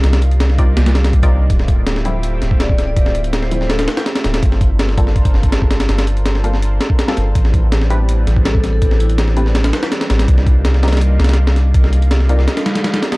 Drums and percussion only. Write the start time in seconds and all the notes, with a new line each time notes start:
0.04 snare, closed hi-hat
0.13 snare, closed hi-hat
0.22 closed hi-hat
0.31 closed hi-hat
0.40 snare, closed hi-hat
0.50 snare
0.58 kick, closed hi-hat
0.77 snare, closed hi-hat
0.86 snare, closed hi-hat
0.95 snare, closed hi-hat
1.04 snare, closed hi-hat
1.13 kick, closed hi-hat
1.23 kick, closed hi-hat
1.50 kick, closed hi-hat
1.59 snare
1.68 kick, closed hi-hat
1.87 snare, closed hi-hat
1.96 snare
2.05 closed hi-hat
2.23 closed hi-hat
2.42 snare, closed hi-hat
2.51 kick
2.60 snare, closed hi-hat
2.69 kick
2.78 snare, closed hi-hat
2.96 kick, closed hi-hat
3.06 snare
3.15 closed hi-hat
3.24 closed hi-hat
3.33 snare, closed hi-hat
3.43 snare
3.51 closed hi-hat
3.61 snare
3.70 snare, closed hi-hat
3.79 snare, closed hi-hat
3.88 snare, closed hi-hat
3.97 snare, closed hi-hat
4.06 snare, closed hi-hat
4.16 snare, closed hi-hat
4.24 snare, closed hi-hat
4.34 snare, closed hi-hat
4.43 kick, closed hi-hat
4.52 snare
4.61 kick, closed hi-hat
4.79 snare, closed hi-hat
4.89 snare
4.98 kick, closed hi-hat
5.07 snare
5.16 kick, closed hi-hat
5.25 kick, closed hi-hat
5.34 snare
5.43 kick, closed hi-hat
5.52 snare, closed hi-hat
5.62 kick
5.71 snare, closed hi-hat
5.80 snare, closed hi-hat
5.89 snare, closed hi-hat
5.99 snare, closed hi-hat
6.07 closed hi-hat
6.17 closed hi-hat
6.26 snare, closed hi-hat
6.35 snare
6.44 closed hi-hat
6.54 snare
6.63 closed hi-hat
6.81 snare, closed hi-hat
6.90 kick
6.99 snare, closed hi-hat
7.08 snare
7.17 snare, closed hi-hat
7.35 kick, closed hi-hat
7.45 snare
7.54 kick, closed hi-hat
7.72 snare, closed hi-hat
7.81 snare
7.90 closed hi-hat
8.09 closed hi-hat
8.27 snare, closed hi-hat
8.36 kick
8.45 snare, closed hi-hat
8.55 kick
8.64 snare, closed hi-hat
8.82 kick, closed hi-hat
8.91 snare
9.00 closed hi-hat
9.09 closed hi-hat
9.18 snare, closed hi-hat
9.28 snare
9.37 closed hi-hat
9.46 snare
9.55 snare, closed hi-hat
9.64 snare, closed hi-hat
9.73 snare, closed hi-hat
9.83 snare, closed hi-hat
9.92 snare, closed hi-hat
10.01 snare, closed hi-hat
10.10 snare, closed hi-hat
10.19 snare, closed hi-hat
10.28 kick, closed hi-hat
10.38 snare
10.46 kick, closed hi-hat
10.65 snare, closed hi-hat
10.74 snare
10.83 snare, closed hi-hat
10.88 snare, closed hi-hat
10.93 snare, closed hi-hat
10.97 snare, closed hi-hat
11.01 closed hi-hat
11.20 snare, closed hi-hat
11.24 snare, closed hi-hat
11.29 snare, closed hi-hat
11.33 snare, closed hi-hat
11.47 snare
11.56 snare, closed hi-hat
11.74 kick, closed hi-hat
11.84 snare
11.93 closed hi-hat
12.02 closed hi-hat
12.11 snare, closed hi-hat
12.20 snare
12.29 closed hi-hat
12.39 snare
12.48 snare, closed hi-hat
12.57 snare, closed hi-hat
12.66 snare, closed hi-hat
12.75 snare, closed hi-hat
12.84 snare, closed hi-hat
12.94 snare, closed hi-hat
13.03 snare, closed hi-hat
13.12 snare, closed hi-hat